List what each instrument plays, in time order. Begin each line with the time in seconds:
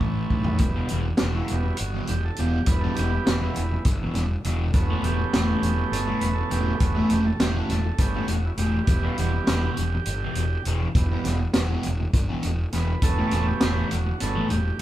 Already playing: distorted electric guitar A2 E3 A3, transistor combo organ C#4 E4 A4 B4
0.01 fingered electric bass A1, kick
0.30 fingered electric bass B1, kick
0.44 floor tom
0.58 fingered electric bass E1, transistor combo organ E3 G3 B3, kick, closed hi-hat, high conga, low conga
0.75 distorted electric guitar E2 B2 E3, low conga
0.88 fingered electric bass E1, distorted electric guitar E2 B2 E3, closed hi-hat, low conga
1.05 muted distorted electric guitar stroke, low conga
1.17 fingered electric bass E1, distorted electric guitar E2, transistor combo organ F#4, snare, closed hi-hat
1.22 distorted electric guitar B2 E3
1.34 distorted electric guitar E2 B2 E3, transistor combo organ E4, high conga
1.48 fingered electric bass E1, transistor combo organ E3 G3 B3 F#4, closed hi-hat, low conga
1.63 muted distorted electric guitar stroke
1.77 fingered electric bass G1, closed hi-hat
1.92 distorted electric guitar E2 B2 E3, low conga
2.07 fingered electric bass E1, transistor combo organ G4, closed hi-hat, high conga
2.25 transistor combo organ A4
2.36 fingered electric bass E1, distorted electric guitar E2 B2 E3, transistor combo organ G4, closed hi-hat, low conga
2.52 low conga
2.66 fingered electric bass E1, transistor combo organ B4, kick, closed hi-hat, high conga, low conga
2.71 transistor combo organ E3 G3 B3
2.81 distorted electric guitar E3, transistor combo organ A4, low conga
2.85 distorted electric guitar E2 B2
2.95 fingered electric bass E1, distorted electric guitar E2 B2, transistor combo organ G4, closed hi-hat, low conga
2.99 distorted electric guitar E3
3.11 muted distorted electric guitar stroke, low conga
3.26 fingered electric bass E1, distorted electric guitar E2 B2 E3, transistor combo organ F#4, snare, closed hi-hat
3.40 distorted electric guitar E2 B2 E3, transistor combo organ E4, high conga
3.55 fingered electric bass E1, transistor combo organ E3 G3 B3, closed hi-hat, low conga
3.72 muted distorted electric guitar stroke
3.85 fingered electric bass G1, kick, closed hi-hat
3.99 distorted electric guitar B2 E3, low conga
4.04 distorted electric guitar E2
4.14 fingered electric bass E1, snare, closed hi-hat, high conga
4.44 fingered electric bass E1, distorted electric guitar E2 B2 E3, closed hi-hat, low conga
4.58 low conga
4.73 fingered electric bass E1, transistor combo organ C#3 A3 B3 F#4, kick, closed hi-hat, high conga, low conga
4.90 distorted electric guitar A2 E3 A3
5.02 fingered electric bass E1, distorted electric guitar A2 E3 A3, transistor combo organ G4, closed hi-hat, low conga
5.17 muted distorted electric guitar stroke, low conga
5.33 fingered electric bass E1, distorted electric guitar A2 E3 A3, snare, closed hi-hat
5.48 distorted electric guitar A2 E3 A3, high conga
5.62 fingered electric bass E1, closed hi-hat, low conga
5.78 muted distorted electric guitar stroke
5.92 fingered electric bass G1, transistor combo organ A4, snare, closed hi-hat
6.07 distorted electric guitar A2 E3 A3, low conga
6.20 fingered electric bass E1, transistor combo organ B4, closed hi-hat, high conga
6.35 transistor combo organ A4
6.50 fingered electric bass E1, distorted electric guitar A2 E3 A3, transistor combo organ G4, closed hi-hat
6.77 transistor combo organ C#3 A3 B3 F#4, kick, closed hi-hat, high conga, low conga
6.81 fingered electric bass E1
6.94 distorted electric guitar A2 E3 A3, transistor combo organ E4
7.10 fingered electric bass E1, distorted electric guitar A2 E3 A3, transistor combo organ G4, closed hi-hat, low conga
7.24 transistor combo organ A4, muted distorted electric guitar stroke, low conga
7.40 fingered electric bass E1, distorted electric guitar A2 E3 A3, transistor combo organ G4, snare, closed hi-hat
7.54 distorted electric guitar A2 E3 A3, transistor combo organ F#4, high conga
7.69 fingered electric bass E1, transistor combo organ A4, snare, closed hi-hat, low conga
7.86 muted distorted electric guitar stroke
7.98 fingered electric bass G1, transistor combo organ C#3 A3 B3 G4, kick, closed hi-hat
8.14 distorted electric guitar A2 E3 A3, low conga
8.28 fingered electric bass E1, transistor combo organ F#4, closed hi-hat, high conga
8.46 transistor combo organ E4
8.57 fingered electric bass E1, distorted electric guitar A2 E3 A3, transistor combo organ G4, closed hi-hat
8.74 low conga
8.83 transistor combo organ E3 G3 B3, closed hi-hat
8.88 fingered electric bass E1, kick, high conga, low conga
9.02 distorted electric guitar E2 B2 E3, transistor combo organ F#4, low conga
9.18 fingered electric bass E1, distorted electric guitar E2 B2 E3, transistor combo organ G4, closed hi-hat, low conga
9.33 muted distorted electric guitar stroke, low conga
9.47 fingered electric bass E1, distorted electric guitar E2 B2 E3, snare, closed hi-hat
9.64 distorted electric guitar E2 B2 E3, high conga
9.77 fingered electric bass E1, closed hi-hat, low conga
9.94 muted distorted electric guitar stroke
10.05 fingered electric bass G1, closed hi-hat
10.21 distorted electric guitar E2 B2 E3, low conga
10.35 fingered electric bass E1, closed hi-hat
10.65 fingered electric bass E1, distorted electric guitar E2 B2 E3, closed hi-hat
10.80 low conga
10.95 fingered electric bass E1, transistor combo organ E3 G3 B3, kick, closed hi-hat, high conga, low conga
11.10 distorted electric guitar E2 B2 E3, low conga
11.25 fingered electric bass E1, distorted electric guitar E2 B2 E3, snare, closed hi-hat, low conga
11.39 muted distorted electric guitar stroke, low conga
11.54 fingered electric bass E1, distorted electric guitar E2 B2 E3, snare, closed hi-hat
11.69 distorted electric guitar E2 B2 E3, high conga
11.83 fingered electric bass E1, closed hi-hat, low conga
12.00 muted distorted electric guitar stroke
12.13 fingered electric bass G1, kick, closed hi-hat
12.28 distorted electric guitar E2 B2 E3, low conga
12.43 fingered electric bass E1, closed hi-hat, high conga
12.72 fingered electric bass E1, distorted electric guitar E2 B2 E3, transistor combo organ B4, snare, closed hi-hat
12.87 low conga
13.02 fingered electric bass E1, transistor combo organ C#3 A3 B3 A4, kick, closed hi-hat, high conga, low conga
13.18 distorted electric guitar A2 E3 A3, low conga
13.31 fingered electric bass E1, distorted electric guitar A2 E3 A3, snare, closed hi-hat, low conga
13.46 transistor combo organ G4, muted distorted electric guitar stroke
13.61 fingered electric bass E1, distorted electric guitar A2 E3 A3, snare, closed hi-hat
13.77 distorted electric guitar A2 E3 A3, high conga
13.91 fingered electric bass E1, transistor combo organ F#4, closed hi-hat, low conga
14.07 muted distorted electric guitar stroke
14.20 fingered electric bass G1, transistor combo organ C#3 A3 B3 A4, snare, closed hi-hat
14.35 distorted electric guitar A2 E3 A3, low conga
14.49 fingered electric bass E1, transistor combo organ G4, closed hi-hat, high conga